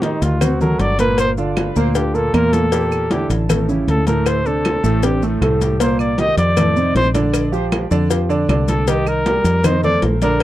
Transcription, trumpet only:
0.03 0.24 D#4 medium
0.23 0.44 F4 medium
0.42 0.61 F#4 medium
0.61 0.82 A#4 medium
0.80 0.99 D5 loud
1.00 1.17 B4 loud
1.20 1.31 C5 medium
1.96 2.16 G4 medium
2.15 2.36 A4 medium
2.35 2.54 A#4 loud
2.53 3.13 A4 medium
3.11 3.30 G4 medium
3.90 4.07 A4 medium
4.08 4.29 A#4 medium
4.27 4.48 C5 medium
4.46 5.06 A4 loud
5.04 5.23 G4 medium
5.81 5.99 C5 medium
6.00 6.21 D5 medium
6.19 6.38 D#5 loud
6.38 6.92 D5 loud
6.97 7.08 C5 loud
8.69 8.90 A4 medium
8.88 9.10 G4 medium
9.08 9.67 A#4 loud
9.66 9.84 C5 medium
9.85 10.02 D5 loud
10.23 10.43 A#4 loud

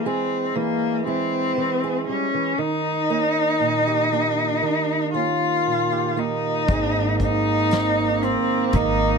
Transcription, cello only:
0.06 0.57 C4 medium
0.55 1.06 A#3 medium
1.07 2.04 C4 medium
2.09 2.60 C#4 medium
2.59 5.13 D#4 medium
5.13 6.20 F4 medium
6.19 7.20 D#4 medium
7.22 8.25 D#4 medium
8.23 8.76 C4 medium
8.75 9.18 D#4 medium

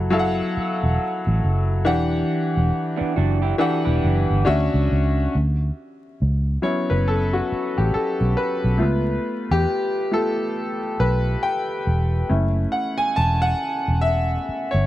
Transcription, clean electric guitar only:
2.97 3.14 B3 medium
2.97 3.14 D4 medium
3.16 3.41 D4 medium
3.16 3.40 F#4 medium
3.42 3.58 E4 medium
3.42 3.58 G4 medium
3.59 3.84 F#4 medium
3.59 3.84 A4 medium
3.85 4.42 G4 medium
3.85 4.42 B4 medium

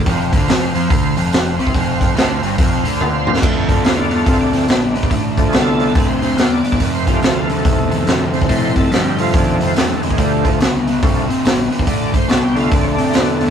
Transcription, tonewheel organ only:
0.05 3.39 C4 medium
0.05 3.39 F4 medium
0.05 3.39 C5 medium
0.05 3.39 F5 medium
3.42 4.50 D3 soft
3.42 4.39 A3 medium
3.42 4.13 F4 soft
3.79 3.83 B3 medium
3.84 3.98 C4 medium
3.98 4.12 D4 medium
4.14 4.41 F4 medium
4.40 4.51 A3 medium
4.40 5.23 D4 medium
4.52 4.66 D3 soft
4.52 4.67 F3 soft
4.52 4.67 A3 medium
5.37 5.92 D3 medium
5.37 5.93 F3 soft
5.37 5.93 A3 medium
5.49 5.53 G#4 medium
5.49 6.08 A4 loud
6.05 6.10 B4 medium
6.05 6.50 C5 medium
6.52 6.93 D5 medium
6.95 7.08 C5 medium
7.06 8.71 C3 medium
7.06 8.72 A3 medium
7.06 7.21 F4 medium
7.06 7.23 G4 medium
7.22 7.48 F4 medium
8.33 8.74 C5 medium
8.76 8.91 A4 medium
8.94 9.19 G4 medium
9.19 9.74 C3 medium
9.19 9.74 F3 soft
9.19 9.74 A3 medium
9.19 9.34 F4 medium
9.36 9.61 D4 medium
9.63 9.77 C4 medium
9.76 10.02 A3 medium
10.02 10.17 G#3 medium
10.17 10.49 D3 soft
10.17 10.42 F3 soft
10.17 10.45 G3 medium
10.17 10.43 A3 medium
10.44 10.59 F3 medium
10.44 10.60 A3 loud
11.02 11.27 D3 soft
11.02 11.27 F3 soft
11.02 11.27 A3 soft
11.88 12.15 D5 medium
12.16 12.29 C5 medium
12.29 12.43 A4 medium
12.43 12.57 G4 medium
12.55 13.50 D3 medium
12.55 13.50 A3 medium
12.55 12.57 F4 medium
12.55 12.72 F4 loud
12.74 12.86 D4 medium
12.84 12.88 C#4 medium
12.84 13.28 D4 loud

